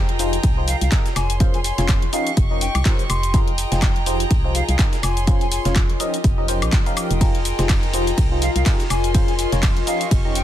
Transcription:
Already playing: F1 F3 D#4 F4 G4 G#4 A#4 C5 D#5 G5 A#5
0.09 closed hi-hat
0.19 F3 D#4 F4 G4 G#4 C5, closed hi-hat, open hi-hat, shaker
0.33 closed hi-hat, shaker
0.43 C2, kick, closed hi-hat, open hi-hat, shaker
0.57 F3 D#4 F4 G4 G#4 C5
0.68 F5, closed hi-hat, open hi-hat, shaker
0.81 C2 F5, closed hi-hat, shaker
0.92 D#4 F4 G4 G#4 A#4, kick, snare, clap, closed hi-hat, shaker
1.06 snare, closed hi-hat, shaker
1.16 F1 G#4 C#5 G#5 C6, snare, closed hi-hat, open hi-hat, high woodblock, shaker
1.30 closed hi-hat, shaker
1.40 F3 C#4 F4 G#4 A#4 C5, kick, closed hi-hat, shaker
1.54 G#5, closed hi-hat
1.60 G#5
1.64 G#5, closed hi-hat, open hi-hat, shaker
1.78 F1 F3 C#4 F4 G#4 A#4 C#5, snare, closed hi-hat, shaker
1.89 kick, snare, clap, closed hi-hat, high woodblock, shaker
2.02 closed hi-hat
2.13 F3 C#4 D#4 G4 A#4 D#5 F5 C#6, closed hi-hat, open hi-hat, shaker
2.27 closed hi-hat, shaker
2.37 F1, kick, closed hi-hat, shaker
2.51 F3 C#4 D#4 G4 A#4 D#5
2.61 G5, closed hi-hat, open hi-hat, shaker
2.68 G5
2.75 C2, closed hi-hat, high woodblock, shaker
2.85 F3 C#4 D#4 G4 A#4 C5, kick, snare, clap, closed hi-hat, shaker
2.99 closed hi-hat, shaker
3.10 F1 C6, closed hi-hat, open hi-hat, high woodblock, shaker
3.23 closed hi-hat, shaker
3.34 F3 D#4 F4 G4 G#4 A#4 G5 A#5, kick, closed hi-hat, shaker
3.48 closed hi-hat
3.58 closed hi-hat, open hi-hat, shaker
3.72 F1 F3 D#4 F4 G4 G#4 C5, snare, closed hi-hat, shaker
3.82 kick, snare, clap, closed hi-hat, high woodblock, shaker
3.96 closed hi-hat
4.06 F3 D#4 F4 G4 G#4 C5, closed hi-hat, open hi-hat, shaker
4.20 closed hi-hat, shaker
4.31 C2, kick, closed hi-hat, open hi-hat, shaker
4.44 F3 D#4 F4 G4 G#4 C5
4.55 F5, closed hi-hat, open hi-hat, shaker
4.68 C2 F5, closed hi-hat, shaker
4.79 D#4 F4 G4 G#4 A#4, kick, snare, clap, closed hi-hat, shaker
4.93 snare, closed hi-hat, shaker
5.03 F1 C#5 G#5 C6, snare, closed hi-hat, open hi-hat, high woodblock, shaker
5.17 closed hi-hat, shaker
5.27 F3 C#4 F4 G#4 A#4 C5, kick, closed hi-hat, shaker
5.36 G#5
5.41 D#5 G#5, closed hi-hat
5.47 A#4
5.52 G#5, closed hi-hat, open hi-hat, shaker
5.65 F1 F3 C#4 F4 G#4 A#4 C#5, snare, closed hi-hat, shaker
5.76 kick, snare, clap, closed hi-hat, high woodblock, shaker
5.90 closed hi-hat
6.00 F3 C#4 D#4 G4 A#4 D#5, closed hi-hat, open hi-hat, shaker
6.14 closed hi-hat, shaker
6.24 F1, kick, closed hi-hat, shaker
6.38 F3 C#4 D#4 G4 A#4 D#5
6.48 F3 C#4 D#4 G4 A#4 C5, closed hi-hat, open hi-hat, shaker
6.55 G5
6.62 A#1, closed hi-hat, high woodblock, shaker
6.73 kick, snare, clap, closed hi-hat, shaker
6.86 F3 C#4 D#4 G4 A#4 F5, closed hi-hat, shaker
6.97 closed hi-hat, open hi-hat, high woodblock, shaker
7.11 F1, closed hi-hat, shaker
7.21 F3 D#4 F4 G4 G#4 A#4 G5 A#5, kick, closed hi-hat, ride, shaker
7.35 closed hi-hat
7.45 closed hi-hat, open hi-hat, shaker
7.59 F1 F3 D#4 F4 G4 G#4 C5, snare, closed hi-hat, shaker
7.69 kick, snare, clap, closed hi-hat, ride, high woodblock, shaker
7.83 closed hi-hat
7.94 F3 D#4 F4 G4 G#4 C5, closed hi-hat, open hi-hat, shaker
8.07 closed hi-hat, shaker
8.18 C2, kick, closed hi-hat, open hi-hat, ride, shaker
8.31 F3 D#4 F4 G4 G#4 C5
8.42 F5, closed hi-hat, open hi-hat, shaker
8.56 C2 F5, closed hi-hat, shaker
8.66 D#4 F4 G4 G#4 A#4, kick, snare, clap, closed hi-hat, ride, shaker
8.80 snare, closed hi-hat, shaker
8.90 F1 G#4 C#5 G#5 C6, snare, closed hi-hat, open hi-hat, high woodblock, shaker
9.04 closed hi-hat, shaker
9.14 F3 C#4 F4 G#4 A#4 C5, kick, closed hi-hat, ride, shaker
9.28 G#5, closed hi-hat
9.35 G#5
9.39 G#5, closed hi-hat, open hi-hat, shaker
9.52 F1 F3 C#4 F4 G#4 A#4 C#5, snare, closed hi-hat, shaker
9.63 kick, snare, clap, closed hi-hat, ride, high woodblock, shaker
9.77 closed hi-hat
9.87 F3 C#4 D#4 G4 A#4 D#5 F5 C#6, closed hi-hat, open hi-hat, shaker
10.01 closed hi-hat, shaker
10.11 F1, kick, closed hi-hat, ride, shaker
10.25 F3 C#4 D#4 G4 A#4 D#5
10.31 G5
10.35 G5, closed hi-hat, open hi-hat, shaker

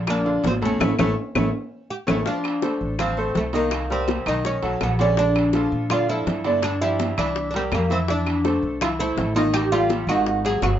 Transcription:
Already playing: A#1
0.07 A#2 A#3 D4 A#4, high bongo, high conga, high timbale, claves
0.25 D3 D4 F4, high bongo, high conga
0.44 A1 C4, high bongo, low bongo, high conga, high timbale, low timbale
0.61 A2 A3 C#4 A4, high bongo, high conga, high timbale
0.80 A1 A3 C#4 E4, low bongo, high conga, high timbale, claves
0.99 A1 A3 C#4 E4, low bongo, high conga, high timbale, claves
1.35 A1 A3 C#4 E4, low bongo, high conga, high timbale, claves
1.90 G4
2.07 A1 A3 C#4 E4, low bongo, high conga, high timbale, claves
2.25 F3 D4 F4 F5, high bongo, high conga
2.44 high bongo, high conga, high timbale, claves
2.62 A3 A4 C5, high bongo, high conga, high timbale
2.81 A1, high conga
2.99 F3 C4 F4 F5, high bongo, high conga, low conga, high timbale, claves
3.17 A3 A4 C5, high bongo, high conga
3.35 C2 A3, high bongo, low bongo, high conga, high timbale
3.53 D#3 A#3 D#4 D#5, high bongo, high conga, high timbale
3.71 high bongo, high timbale, claves
3.90 G3 C4 G4 A#4, high bongo, high conga
4.08 high bongo, high conga, high timbale
4.26 B1 D#3 D#4 D#5, high conga, high timbale, claves
4.44 C#4, high bongo, high conga
4.62 B1 F#3 F#4 A4, high bongo, high conga, high timbale
4.81 A#1 B3, high bongo, low bongo, high conga, high timbale, claves
4.98 D3 C#4 D4 D5, high bongo, high conga, high timbale
5.17 D3 D4 D5, high bongo, high conga
5.35 high bongo, high conga, high timbale, claves
5.53 F3 F4 A4, high bongo, high conga, high timbale
5.72 A#2, high conga
5.90 D3 D4 F4 D5, high bongo, high conga, low conga, high timbale, claves
6.08 F3 D4 E4 A4, high bongo, high conga
6.26 G2, high bongo, low bongo, high conga, high timbale
6.44 D3 D4 D5, high bongo, high conga, high timbale
6.62 D4, high bongo, high conga, high timbale, claves
6.81 F3 D4 E4 G4, high bongo, high conga
7.00 high bongo, high conga, high timbale
7.17 C2 E3 D4 E4 E5, high conga, high timbale, claves
7.36 high bongo, high conga
7.51 D4, high bongo, high conga, high timbale
7.55 G3 C4 G4 A#4
7.72 F2 A#3, high bongo, low bongo, high conga, high timbale, claves
7.90 E3 C4 E4 E5, high bongo, high conga, high timbale
8.08 E3 D4 E4 E5, high bongo, high conga
8.26 high bongo, high conga, high timbale, claves
8.44 A3 A4 C5, high bongo, high conga, high timbale
8.62 C2, high conga
8.81 E3 E4 F4 E5, high bongo, high conga, low conga, high timbale, claves
8.99 A3 E4 A4 C5, high bongo, high conga
9.17 A1, high bongo, low bongo, high conga, high timbale
9.35 D#3 D#4 F4 D#5, high bongo, high conga, high timbale
9.54 G4, high bongo, high timbale, claves
9.72 G3 F4 G4 A4, high bongo, high conga
9.90 high bongo, high conga, high timbale
10.07 G#1 D#3 D#4 F#4 D#5, high conga, high timbale, claves
10.26 high bongo, high conga
10.44 F#3 F#4 G#4, high bongo, high conga, high timbale
10.62 G1 F#4, high bongo, low bongo, high conga, high timbale, low timbale, claves

